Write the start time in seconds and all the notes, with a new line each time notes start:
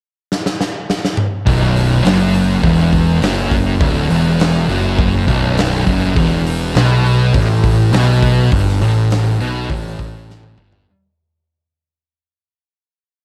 0.32 snare
0.46 snare
0.61 snare
0.90 snare
1.05 snare
1.17 mid tom
1.46 B0 B1, kick, open hi-hat
1.76 open hi-hat
2.04 F#1 F#2, snare, open hi-hat
2.34 open hi-hat
2.63 E1 E2, kick, open hi-hat
2.92 kick, open hi-hat
3.22 F#1 F#2, snare, open hi-hat
3.51 kick, open hi-hat
3.80 D1 D2, kick, open hi-hat
4.09 E1 E2, open hi-hat
4.40 snare, open hi-hat
4.68 F#1 F#2, open hi-hat
4.99 kick, open hi-hat
5.27 B0 B1, kick, open hi-hat
5.57 snare, open hi-hat
5.86 F#1 F#2, kick, open hi-hat
6.15 E1 E2, kick, open hi-hat
6.46 open hi-hat
6.75 B1 B2, snare, open hi-hat
7.05 open hi-hat
7.34 A1 A2, kick, open hi-hat
7.64 kick, open hi-hat
7.92 B1 B2, snare, open hi-hat
8.22 kick, open hi-hat
8.52 G1 G2, kick, open hi-hat
8.69 snare
8.81 A1 A2, open hi-hat
9.11 snare, open hi-hat
9.39 B1 B2, open hi-hat
9.70 A1 A2, kick, open hi-hat
9.99 kick, open hi-hat
10.30 snare
10.43 high tom
10.57 G1 G2, mid tom
10.72 floor tom